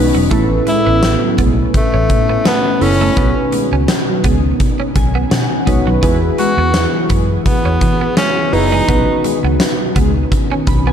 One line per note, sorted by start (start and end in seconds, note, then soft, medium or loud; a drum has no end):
0.00 0.10 B1 medium
0.00 0.29 D#3 medium
0.00 0.21 B3 medium
0.00 10.93 B3 medium
0.00 0.22 C#4 medium
0.00 0.29 C#4 medium
0.00 0.22 D#4 medium
0.00 0.22 F#4 medium
0.00 0.22 B4 loud
0.15 0.27 E1 medium
0.15 0.25 F#3 medium
0.31 0.58 A1 loud
0.31 1.35 A2 medium
0.31 0.45 A3 loud
0.31 0.43 A3 medium
0.31 3.15 A3 medium
0.31 1.31 B3 medium
0.31 1.31 C#4 medium
0.31 5.99 C#4 loud
0.31 1.31 E4 medium
0.31 0.45 A4 loud
0.31 1.32 A4 medium
0.31 1.32 B4 loud
0.31 kick loud
0.31 closed hi-hat medium
0.67 0.81 G#3 medium
0.67 1.35 E4 loud
0.67 0.81 G#4 medium
0.67 muted clean electric guitar stroke soft
0.67 closed hi-hat medium
0.87 1.13 A1 loud
0.87 0.97 B3 medium
1.03 snare loud
1.03 closed hi-hat loud
1.03 tambourine medium
1.22 1.35 F#3 medium
1.22 1.35 F#4 medium
1.38 1.65 B1 medium
1.38 1.54 G#3 medium
1.38 1.51 B3 medium
1.38 1.54 G#4 loud
1.38 kick medium
1.38 closed hi-hat medium
1.74 2.43 A3 loud
1.74 kick medium
1.74 closed hi-hat medium
1.94 2.06 A1 loud
1.94 2.04 C#4 medium
2.10 2.37 A2 loud
2.10 muted clean electric guitar stroke soft
2.10 kick medium
2.10 closed hi-hat medium
2.29 2.39 B3 medium
2.45 2.58 A3 medium
2.45 2.84 B3 loud
2.45 snare loud
2.45 closed hi-hat medium
2.45 tambourine medium
2.66 muted clean electric guitar stroke soft
2.80 3.08 F#1 medium
2.80 3.07 B3 medium
2.80 3.07 C#4 medium
2.80 3.53 C#4 loud
2.80 3.07 E4 medium
2.80 3.07 A4 medium
2.80 3.08 B4 medium
2.80 open hi-hat medium
3.01 3.11 A3 medium
3.16 3.32 B1 loud
3.16 4.20 B2 medium
3.16 6.00 D#3 medium
3.16 4.17 B3 medium
3.16 3.31 B3 loud
3.16 3.29 B3 medium
3.16 4.17 C#4 medium
3.16 4.17 D#4 medium
3.16 4.17 F#4 medium
3.16 4.17 B4 medium
3.16 3.31 B4 loud
3.16 kick loud
3.16 closed hi-hat medium
3.52 3.67 G#3 medium
3.52 3.67 G#4 medium
3.52 muted clean electric guitar stroke soft
3.52 closed hi-hat medium
3.72 3.84 C#2 medium
3.72 3.83 C#4 medium
3.88 snare loud
3.88 closed hi-hat loud
3.88 tambourine medium
4.08 4.21 F#3 medium
4.08 4.21 F#4 medium
4.24 4.51 C#2 medium
4.24 4.40 G#3 medium
4.24 4.37 B3 medium
4.24 4.40 G#4 loud
4.24 kick loud
4.24 closed hi-hat medium
4.60 kick medium
4.60 closed hi-hat medium
4.80 4.90 C#4 medium
4.95 5.22 B1 medium
4.95 5.29 G#5 medium
4.95 muted clean electric guitar stroke soft
4.95 kick medium
4.95 closed hi-hat medium
5.15 5.25 B3 medium
5.31 5.46 B2 loud
5.31 5.65 F#5 medium
5.31 muted clean electric guitar stroke soft
5.31 snare loud
5.31 closed hi-hat medium
5.31 tambourine medium
5.66 5.82 B1 medium
5.66 5.79 G#3 medium
5.66 5.93 B3 medium
5.66 5.93 C#4 medium
5.66 5.93 D#4 medium
5.66 5.93 F#4 medium
5.66 5.93 B4 medium
5.66 6.00 C#5 medium
5.66 kick medium
5.66 closed hi-hat medium
5.86 5.99 B1 medium
5.86 5.97 F#3 medium
6.02 8.85 E3 medium
6.02 7.06 E3 medium
6.02 6.15 G#3 medium
6.02 7.03 B3 medium
6.02 6.17 B3 loud
6.02 7.03 E4 medium
6.02 8.85 F#4 medium
6.02 7.03 F#4 medium
6.02 8.85 G#4 medium
6.02 7.03 G#4 medium
6.02 6.17 B4 loud
6.02 7.03 B4 loud
6.02 kick loud
6.02 closed hi-hat medium
6.38 6.53 G#3 medium
6.38 7.06 F#4 loud
6.38 6.53 G#4 medium
6.38 muted clean electric guitar stroke soft
6.38 closed hi-hat medium
6.57 6.84 E2 medium
6.57 6.68 B3 medium
6.74 snare loud
6.74 closed hi-hat loud
6.74 tambourine medium
6.94 7.07 F#3 medium
6.94 7.07 F#4 medium
7.10 7.37 F#2 medium
7.10 7.26 G#3 medium
7.10 7.22 B3 medium
7.10 7.26 G#4 medium
7.10 kick medium
7.10 closed hi-hat medium
7.46 8.14 B3 loud
7.46 kick medium
7.46 closed hi-hat medium
7.65 7.77 E2 loud
7.65 7.75 C#4 medium
7.81 8.08 E3 loud
7.81 muted clean electric guitar stroke soft
7.81 kick medium
7.81 closed hi-hat medium
8.01 8.11 B3 medium
8.17 8.29 G#3 medium
8.17 8.55 C#4 loud
8.17 snare loud
8.17 closed hi-hat loud
8.17 tambourine medium
8.37 muted clean electric guitar stroke soft
8.52 8.80 F#1 medium
8.52 8.78 B3 medium
8.52 9.25 D#4 loud
8.52 8.79 E4 medium
8.52 8.79 F#4 medium
8.52 8.79 G#4 medium
8.52 8.79 B4 medium
8.52 open hi-hat medium
8.72 8.82 G#3 medium
8.88 9.03 B1 loud
8.88 9.92 B2 medium
8.88 10.93 D#3 medium
8.88 9.88 B3 medium
8.88 9.03 B3 loud
8.88 9.01 B3 medium
8.88 10.93 C#4 loud
8.88 9.88 C#4 medium
8.88 9.88 D#4 medium
8.88 9.89 F#4 medium
8.88 9.03 B4 loud
8.88 9.89 B4 medium
8.88 kick loud
8.88 closed hi-hat medium
9.24 9.39 G#3 medium
9.24 9.38 G#4 medium
9.24 muted clean electric guitar stroke soft
9.24 closed hi-hat medium
9.43 9.56 C#2 medium
9.43 9.54 B3 medium
9.60 snare loud
9.60 closed hi-hat loud
9.60 tambourine medium
9.80 9.93 F#3 medium
9.80 9.93 F#4 medium
9.96 10.23 C#2 loud
9.96 10.12 G#3 medium
9.96 10.08 B3 medium
9.96 10.12 G#4 medium
9.96 kick medium
9.96 closed hi-hat medium
10.32 kick medium
10.32 closed hi-hat medium
10.52 10.61 C#4 medium
10.67 10.93 B1 medium
10.67 10.86 B5 medium
10.67 muted clean electric guitar stroke soft
10.67 kick medium
10.67 closed hi-hat medium
10.87 10.93 B3 medium
10.87 10.93 G#5 medium